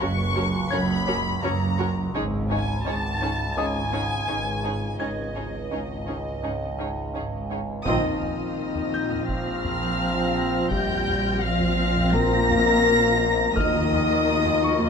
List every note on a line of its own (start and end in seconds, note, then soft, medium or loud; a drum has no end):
0.00 0.63 F#1 medium
0.00 2.10 C#2 medium
0.00 0.63 F#2 medium
0.00 0.09 C#4 medium
0.00 0.09 F#4 medium
0.00 0.09 A#4 medium
0.00 0.08 C#5 medium
0.00 0.71 C#6 medium
0.00 1.75 C#6 soft
0.00 1.04 F#6 soft
0.36 0.44 C#4 medium
0.36 0.44 F#4 medium
0.36 0.44 A#4 medium
0.36 0.44 C#5 medium
0.71 1.34 F#1 medium
0.71 1.35 F#2 medium
0.71 0.97 F#3 medium
0.71 0.97 C#4 medium
0.71 0.80 C#4 medium
0.71 0.80 F#4 medium
0.71 0.79 A#4 medium
0.71 0.79 C#5 medium
0.71 1.43 B5 loud
0.71 2.81 G#6 medium
1.07 1.16 C#4 medium
1.07 1.15 F#4 medium
1.07 1.15 A#4 medium
1.07 1.15 C#5 medium
1.42 2.06 F#1 medium
1.42 2.06 F#2 medium
1.42 1.51 C#4 medium
1.42 1.51 F#4 medium
1.42 1.51 A#4 medium
1.42 1.51 C#5 medium
1.42 2.15 A#5 medium
1.78 1.86 C#4 medium
1.78 1.86 F#4 medium
1.78 1.87 A#4 medium
1.78 1.87 C#5 medium
2.14 2.77 G#1 medium
2.14 4.96 C#2 medium
2.14 2.77 G#2 medium
2.14 2.40 G#3 medium
2.14 2.22 C#4 medium
2.14 2.40 C#4 medium
2.14 2.22 D#4 medium
2.14 2.23 G#4 medium
2.14 2.23 C#5 medium
2.50 2.58 C#4 medium
2.50 2.58 D#4 medium
2.50 2.59 G#4 medium
2.50 2.59 C#5 medium
2.50 2.84 G#5 medium
2.86 3.49 G#1 medium
2.86 3.49 G#2 medium
2.86 2.94 C#4 medium
2.86 2.94 D#4 medium
2.86 2.94 G#4 medium
2.86 2.94 C#5 medium
2.86 3.56 A5 loud
3.21 3.30 C#4 soft
3.21 3.30 D#4 medium
3.21 3.29 G#4 medium
3.21 3.29 C#5 soft
3.56 4.20 G#1 medium
3.56 4.20 G#2 medium
3.56 3.66 D#3 medium
3.56 3.83 G#3 medium
3.56 3.83 C#4 medium
3.56 3.65 C#4 soft
3.56 3.65 G#4 soft
3.56 3.65 C#5 soft
3.56 5.68 D#5 soft
3.56 5.00 G#5 loud
3.56 5.68 D#6 medium
3.92 4.01 C#4 medium
3.92 4.01 D#4 medium
3.92 4.01 G#4 soft
3.92 4.00 C#5 soft
4.27 4.92 G#1 medium
4.27 4.92 G#2 medium
4.27 4.37 C#4 soft
4.27 4.37 D#4 soft
4.27 4.35 G#4 soft
4.27 4.36 C#5 soft
4.64 4.73 C#4 soft
4.64 4.72 D#4 soft
4.64 4.73 G#4 soft
4.64 4.72 C#5 soft
5.00 5.63 G#1 medium
5.00 7.82 C#2 medium
5.00 5.63 G#2 soft
5.00 5.25 G#3 soft
5.00 5.08 C#4 soft
5.00 5.25 C#4 soft
5.00 5.08 D#4 soft
5.00 5.08 G#4 soft
5.00 5.08 C#5 soft
5.00 7.47 D#5 medium
5.00 7.10 G#6 soft
5.36 5.44 C#4 soft
5.36 5.44 D#4 soft
5.36 5.44 G#4 soft
5.36 5.44 C#5 soft
5.71 6.35 G#1 soft
5.71 6.35 G#2 medium
5.71 5.79 C#4 soft
5.71 5.80 D#4 soft
5.71 5.80 G#4 soft
5.71 5.80 C#5 soft
6.08 6.16 C#4 soft
6.08 6.16 D#4 soft
6.08 6.16 G#4 soft
6.08 6.16 C#5 soft
6.43 7.06 G#1 soft
6.43 7.06 G#2 soft
6.43 6.69 G#3 soft
6.43 6.51 C#4 soft
6.43 6.69 C#4 soft
6.43 6.51 D#4 soft
6.43 6.52 G#4 soft
6.43 6.52 C#5 soft
6.79 6.87 C#4 soft
6.79 6.87 D#4 soft
6.79 6.88 G#4 soft
6.79 6.88 C#5 soft
7.14 7.78 G#1 soft
7.14 7.78 G#2 soft
7.14 7.22 C#4 soft
7.14 7.23 D#4 soft
7.14 7.23 G#4 soft
7.14 7.23 C#5 soft
7.50 7.58 C#4 soft
7.50 7.59 D#4 soft
7.50 7.58 G#4 soft
7.50 7.59 C#5 soft
7.85 10.68 A#1 medium
7.85 9.25 D#3 medium
7.85 10.68 F3 medium
7.85 10.68 C4 medium
7.85 9.25 D#4 medium
7.85 10.68 F4 medium
7.85 9.25 D#5 medium
7.85 9.25 D#6 medium
7.85 13.18 F6 soft
7.85 taiko medium
8.04 taiko low-mid soft
8.22 taiko low-mid soft
8.57 13.17 A#6 soft
8.75 taiko low-mid soft
8.94 11.04 G6 medium
9.11 taiko low-mid soft
9.29 10.72 F3 medium
9.29 10.72 F4 medium
9.29 10.72 F5 medium
9.29 10.72 F6 medium
9.29 taiko medium
9.65 taiko low-mid medium
10.36 12.46 A#6 soft
10.71 13.53 A#1 medium
10.71 13.54 A#1 medium
10.71 13.54 F3 medium
10.71 11.42 G3 medium
10.71 13.53 C4 medium
10.71 13.54 C4 medium
10.71 13.54 F4 medium
10.71 11.42 G4 medium
10.71 11.42 G5 medium
10.71 11.42 G6 medium
10.71 taiko medium
10.89 taiko low-mid soft
11.07 taiko low-mid medium
11.43 12.14 F3 medium
11.43 12.15 F4 medium
11.43 12.15 F5 medium
11.43 12.13 F6 medium
11.60 taiko low-mid soft
11.96 taiko low-mid soft
12.14 13.57 A#3 medium
12.14 13.57 A#4 loud
12.14 13.57 A#5 medium
12.14 13.57 A#6 loud
12.14 taiko medium
12.50 taiko low-mid medium
13.56 14.89 D#2 medium
13.56 14.89 D#3 medium
13.56 14.89 F3 medium
13.56 14.89 A#3 medium
13.56 14.83 D#4 medium
13.56 14.89 F4 medium
13.56 14.89 D#5 medium
13.56 14.89 D#6 loud
13.56 14.89 F6 medium
13.56 taiko medium
13.75 taiko low-mid medium
13.93 taiko low-mid medium
14.46 taiko low-mid medium
14.64 14.89 C#6 medium
14.82 taiko low-mid medium